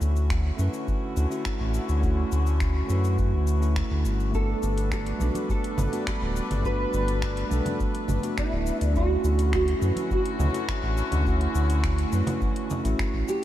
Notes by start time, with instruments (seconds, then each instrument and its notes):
Already playing: string section D3 A3 C#4 E4 F#4, tine electric piano A3 C#4 E4 F#4
0.01 analog synth bass D2, cabasa
0.16 cabasa
0.30 finger snap, kick, cabasa
0.56 analog synth bass F#2, tine electric piano A3 C#4 E4, cabasa
0.61 tine electric piano B4
0.74 cabasa
0.88 kick, cabasa
1.17 analog synth bass D2, cabasa
1.30 tine electric piano A3 C#4 E4 F#4, cabasa
1.45 finger snap, kick, cabasa
1.60 analog synth bass A1
1.74 cabasa
1.89 analog synth bass D2, cabasa
2.00 tine electric piano A3 C#4 E4, kick, cabasa
2.05 tine electric piano F#4
2.32 analog synth bass D2, cabasa
2.47 cabasa
2.60 finger snap, kick, cabasa
2.87 analog synth bass F#2, tine electric piano A3 C#4 E4, cabasa
2.92 tine electric piano B4
3.04 cabasa
3.18 kick, cabasa
3.33 analog synth bass D2
3.47 cabasa
3.60 tine electric piano A3 C#4 E4 F#4, cabasa
3.76 finger snap, kick, cabasa
3.91 analog synth bass D2
4.05 analog synth bass G1, cabasa
4.20 cabasa
4.31 string section G3 D4 A4 B4, tine electric piano A3 B3 D4, nylon-string guitar A4, kick, cabasa
4.36 tine electric piano F#4
4.63 analog synth bass G1, cabasa
4.78 closed hi-hat, cabasa
4.92 nylon-string guitar A4, finger snap, kick, cabasa
5.06 closed hi-hat
5.18 analog synth bass B1, tine electric piano A3 B3 D4, high conga, cabasa
5.23 tine electric piano A4
5.35 closed hi-hat, high conga, cabasa
5.49 nylon-string guitar A4, kick, cabasa
5.64 closed hi-hat
5.78 analog synth bass G1, high conga, low conga, cabasa
5.91 tine electric piano A3 B3 D4 F#4, closed hi-hat, cabasa
6.07 nylon-string guitar B4, finger snap, kick, cabasa
6.22 analog synth bass D1
6.36 cabasa
6.51 analog synth bass G1, closed hi-hat, low conga, cabasa
6.62 tine electric piano A3 B3 D4, nylon-string guitar B4, kick, cabasa
6.67 tine electric piano F#4
6.94 analog synth bass G1, cabasa
7.08 closed hi-hat, cabasa
7.22 finger snap, kick, cabasa
7.37 closed hi-hat
7.48 analog synth bass B1, tine electric piano A3 B3 D4, high conga, cabasa
7.53 tine electric piano A4
7.66 closed hi-hat, high conga, low conga, cabasa
7.80 kick, cabasa
7.95 closed hi-hat
8.08 analog synth bass G1, high conga, low conga, cabasa
8.22 tine electric piano A3 B3 D4 F#4, closed hi-hat, cabasa
8.38 nylon-string guitar E4, finger snap, kick, cabasa
8.52 analog synth bass D1
8.67 cabasa
8.81 analog synth bass D2, nylon-string guitar D4, closed hi-hat, cabasa
8.93 string section D3 A3 C#4 E4 F#4, tine electric piano A3 C#4 E4, nylon-string guitar F#4, kick, cabasa
8.98 tine electric piano F#4
9.24 analog synth bass D2, cabasa
9.39 closed hi-hat, cabasa
9.53 nylon-string guitar F#4, finger snap, kick, cabasa
9.68 closed hi-hat
9.79 analog synth bass F#2, tine electric piano A3 C#4 E4, high conga, cabasa
9.84 tine electric piano B4
9.96 closed hi-hat, high conga, cabasa
10.11 nylon-string guitar F#4, kick, cabasa
10.26 closed hi-hat
10.40 analog synth bass D2, high conga, low conga, cabasa
10.53 tine electric piano A3 C#4 E4 F#4, closed hi-hat, cabasa
10.69 finger snap, kick, cabasa
10.83 analog synth bass A1
10.97 cabasa
11.12 analog synth bass D2, closed hi-hat, low conga, cabasa
11.24 tine electric piano A3 C#4 E4, kick, cabasa
11.28 tine electric piano F#4
11.41 closed hi-hat
11.55 analog synth bass D2, cabasa
11.70 closed hi-hat, cabasa
11.84 finger snap, kick, cabasa
11.98 closed hi-hat
12.10 analog synth bass F#2, tine electric piano A3 C#4 E4, high conga, cabasa
12.15 tine electric piano B4
12.27 closed hi-hat, high conga, low conga, cabasa
12.42 kick, cabasa
12.56 closed hi-hat
12.70 high conga, low conga, cabasa
12.84 analog synth bass A1, tine electric piano A3 C#4 E4 F#4, closed hi-hat, cabasa
12.99 finger snap, kick, cabasa
13.14 analog synth bass A1
13.28 nylon-string guitar G4, cabasa